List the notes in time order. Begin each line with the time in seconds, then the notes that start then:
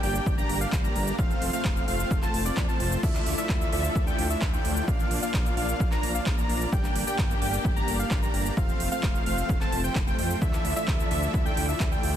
Already playing: A#3 D4 G4
0.03 G1 A#3 D4 G4 D5 G5, open hi-hat
0.15 shaker
0.26 G1, kick, shaker
0.38 A#3 D4 G4 D5 A#5, shaker
0.49 G1, open hi-hat
0.61 A#3 D4 G4 D5 F5, shaker
0.72 G1, kick, clap, shaker
0.84 A#3 D4 G4 D5 A#5, shaker
0.95 G1, open hi-hat
1.08 shaker
1.19 F1 F3 A3 C4 F4 C5 F5, kick, shaker
1.31 shaker
1.42 F1, open hi-hat
1.53 A3 C4 F4 C5 F5, shaker
1.65 F1, kick, clap, shaker
1.77 shaker
1.88 F1 A3 C4 F4 C5 F5, open hi-hat
2.00 shaker
2.11 F1, kick, shaker
2.22 A3 C4 F4 C5 A5, clap, shaker
2.34 F1, open hi-hat
2.46 A3 C4 F4 C5 D5, shaker
2.57 F2, kick, clap, shaker
2.69 A3 C4 F4 C5 A5, shaker
2.80 F1, open hi-hat
2.92 shaker
3.03 D2 D3 A3 D4 E4 F4 A4 D5 E5, kick, crash, shaker
3.15 clap, shaker
3.26 D2, open hi-hat
3.38 A3 E4 F4 D5 E5, shaker
3.49 D2, kick, clap, shaker
3.61 shaker
3.72 D2 A3 E4 F4 D5 E5, open hi-hat
3.84 shaker
3.96 D2, kick, shaker
4.07 A3 E4 F4 D5 G5, shaker
4.19 D2, open hi-hat
4.30 A3 E4 F4 D5 E5, shaker
4.42 D2, kick, clap, shaker
4.53 A3 E4 F4 D5 G5, shaker
4.65 D2, open hi-hat
4.77 shaker
4.88 A#1 A#3 D4 F4 F5, kick, shaker
5.00 shaker
5.11 A#1, open hi-hat
5.22 A#3 D4 F4 D5 F5, shaker
5.34 A#1, kick, clap, shaker
5.46 shaker
5.57 A#1 A#3 D4 F4 D5 F5, open hi-hat
5.69 shaker
5.80 A#1, kick, shaker
5.92 A#3 D4 F4 D5 A#5, clap, shaker
6.03 A#1, open hi-hat
6.15 A#3 D4 F4 D5 F5, shaker
6.26 A#1, kick, clap, shaker
6.38 A#3 D4 F4 D5 A#5, shaker
6.49 A#1, open hi-hat
6.61 shaker
6.73 G1 A#3 D4 G4 D5 G5, kick, shaker
6.84 clap, shaker
6.96 G1, open hi-hat
7.07 A#3 D4 G4 D5 G5, shaker
7.18 G1, kick, clap, shaker
7.31 shaker
7.42 G1 A#3 D4 G4 D5 G5, open hi-hat
7.54 shaker
7.65 G1, kick, shaker
7.76 A#3 D4 G4 D5 A#5, shaker
7.88 G1, open hi-hat
7.99 A#3 D4 G4 D5 F5, shaker
8.11 G1, kick, clap, shaker
8.23 A#3 D4 G4 D5 A#5, shaker
8.34 G1, open hi-hat
8.46 shaker
8.57 F1 F3 A3 C4 F4 C5 F5, kick, shaker
8.69 shaker
8.80 F1, open hi-hat
8.92 A3 C4 F4 C5 F5, shaker
9.03 F1, kick, clap, shaker
9.15 shaker
9.26 F1 A3 C4 F4 C5 F5, open hi-hat
9.38 shaker
9.49 F1, kick, shaker
9.61 A3 C4 F4 C5 A5, clap, shaker
9.72 F1, open hi-hat
9.84 A3 C4 F4 C5 G5, shaker
9.95 F1, kick, clap, shaker
10.07 A3 C4 F4 C5 G5, shaker
10.19 F2 A3 C4 F4 C5 G5, open hi-hat
10.31 shaker
10.42 D2 D3 A3 D4 E4 F4 A4 D5 E5, kick, shaker
10.53 clap, shaker
10.65 D2, open hi-hat
10.76 A3 E4 F4 D5 E5, shaker
10.88 D2, kick, clap, shaker
11.00 shaker
11.11 D2 A3 E4 F4 D5 E5, open hi-hat
11.23 shaker
11.34 D2, kick, shaker
11.46 A3 E4 F4 D5 G5, shaker
11.57 D2, open hi-hat
11.69 A3 E4 F4 D5 E5, shaker
11.80 D2, kick, clap, shaker
11.92 A3 E4 F4 D5 G5, shaker
12.03 D2, open hi-hat